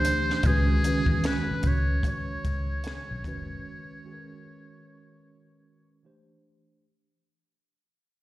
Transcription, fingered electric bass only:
Already playing: D2
0.45 C#2
1.08 E2
1.51 muted fingered electric bass stroke
1.65 C#2
2.46 C#2
3.11 B1
3.26 F#1

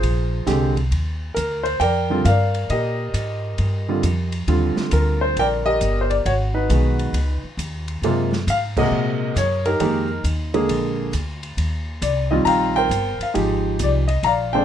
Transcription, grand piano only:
Already playing: F4 G#4 C5
0.46 D3 G#3 C4 G4
1.34 A#4
1.63 C5
1.80 A#4 D5 G5
2.10 D3 G3 C4 F4
2.25 A#4 D5 F5
2.70 G4 A#4 D#5
3.89 D3 G3 C4 F4
4.48 D3 G3 C4 F4
4.93 A#4
5.21 C5
5.39 A#4 D5 G5
5.66 G4 A#4 D#5
6.01 C5
6.10 D5
6.26 F#4 C#5
6.54 D#4 F#4 B4
6.71 D#3 G#3 B3 F#4
8.04 C3 G#3 A#3 F4
8.50 F5
8.77 C3 G#3 A#3 F#4 G#4 A#4 D#5
9.38 C#5
9.66 D#4 G4 A#4
9.80 D#3 G#3 A#3 G4
10.54 D3 G#3 A#3 G#4
12.02 D5
12.31 D#3 G3 C4 F4 D#5
12.45 F5 G5 A#5
12.76 A#4 C5 G5
13.23 F5
13.34 F3 G#3 D#4 G4
13.83 D5
14.08 D#5
14.24 D5 F5 A#5
14.53 D3 G#3 C4 D4 C5 D5 G5

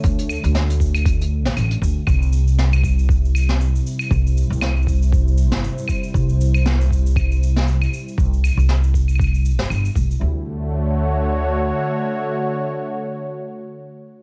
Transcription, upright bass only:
0.04 D2
0.44 D2
1.46 A1
1.57 A1
1.82 D2
2.07 C2
4.11 C2
4.50 C2
5.52 G1
6.14 C2
8.18 C2
8.57 C2
9.59 G1
9.70 G1
9.95 C2
10.21 D2

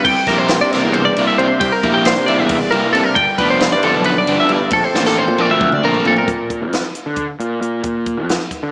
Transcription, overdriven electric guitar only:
0.28 C3 G3 A#3 E4
0.74 C3 G3 A#3 E4
1.19 C3 G3 A#3 E4
1.83 C3 G3 A#3 E4
2.28 C3 G3 A#3 E4
2.72 C3 G3 A#3 E4
3.40 D3 F3 B3 D4
3.83 D3 F3 B3 D4
4.28 D3 F3 B3 D4
4.95 A#2 F3 A#3 D4
5.38 A#2 F3 A#3 D4
5.83 A#2 F3 A#3 D4

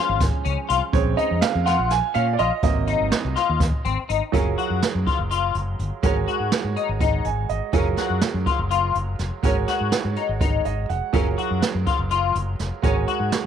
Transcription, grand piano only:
Already playing: F3 G#3 C#4 G#5
0.93 C#3 G#3 C4 C#5
1.17 D#5
1.41 F5
1.66 F#5
1.91 G#5
2.15 F5
2.33 D5
2.39 D#5
2.63 C3 F#3 A#3 D#5
4.32 F#3 F4 G#4 A#4
6.03 G#3 F#4 A#4 C#5
7.25 G#5
7.49 D#5
7.73 F#3 F4 G#4 A#4
9.43 G#3 F#4 A#4 C#5
10.65 D#5
10.90 F#5
11.13 F#3 F4 G#4 A#4
12.82 G#3 F#4 A#4 C#5

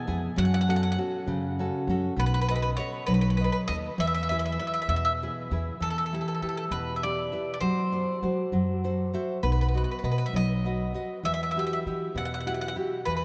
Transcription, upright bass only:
0.08 F2
0.37 F#2
1.26 F#2
1.87 F#2
2.16 B1
3.08 B1
3.69 D#2
3.98 E2
4.88 E2
5.51 E2
5.81 E2
6.42 E3
6.71 E2
7.61 F#2
8.22 F#3
8.52 F#2
9.43 B1
10.03 B2
10.33 B1
11.23 E2
11.86 E3
12.15 E2
13.07 E2

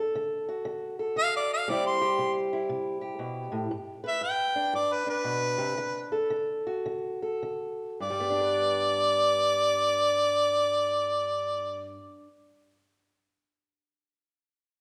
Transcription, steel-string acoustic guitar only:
Already playing: D3 D4 A4
0.15 D3
0.49 F#4
0.65 D3
0.99 A4
1.16 D3
1.68 C3 G3 C4 E4 G4
2.01 G4
2.19 C3
2.53 E4
2.69 C3
3.01 G4
3.19 B2
3.52 A2
3.71 G2
4.04 B4
4.21 G2
4.56 D4
4.73 G2
5.07 D4
5.24 B2
5.58 C3
5.78 D3
6.12 A4
6.30 D3
6.67 F#4
6.86 D3
7.22 A4
7.43 D3
8.00 G2
8.10 G3
8.20 B3
8.30 D4
8.40 B4

